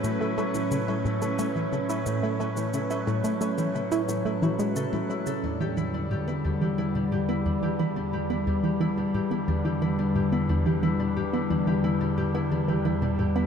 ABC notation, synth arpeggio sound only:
X:1
M:4/4
L:1/16
Q:1/4=89
K:A
V:1 name="Synth arpeggio sound" clef=bass
A,, A, A, E, C, E A,, A, A, E, C, E A,, A, A, E, | C, E A,, A, A, E, C, E A,, A, E, G, C, A,, A, C, | [K:Em] E,, E, E, B,, A,, B, E,, E, E, B,, A,, B, E,, E, E, B,, | A,, B, E,, E, E, B,, A,, B, E,, E, E, B,, A,, B, E,, E, |
E, B,, A,, B, E,, E, E, B,, A,, B, E,, E, E, B,, A,, B, |]